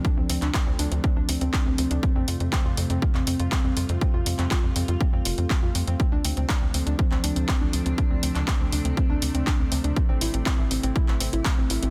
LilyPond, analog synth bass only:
\new Staff \with { instrumentName = "Analog synth bass" } { \clef bass \time 4/4 \key d \minor \tempo 4 = 121 r16 d,16 d,16 d,16 r16 d,16 d,16 d,16 r16 d,16 d,16 d,16 r16 d,16 d,16 d,16 | r16 f,16 f,16 f,16 r16 f,16 f,16 f,16 r16 f,16 f,16 f,16 r16 f,16 f,16 f,16 | r16 f,16 f,16 f,16 r16 f,16 f,16 f,16 r16 f,16 f,,16 f,16 r16 f,16 f,16 f,16 | r16 d,16 d,16 d,16 r16 d,16 d,16 d,16 r16 d,16 d,16 d,16 r16 d,16 d,16 d,16 |
r16 d,16 d,16 d,16 r16 d,16 d,16 d,16 r16 d,16 d,16 d,16 r16 d,16 d,16 d,16 | r16 a,,16 a,,16 a,,16 r16 a,,16 a,,16 a,,16 r16 a,,16 a,,16 a,,16 r16 a,,16 a,,16 a,,16 | }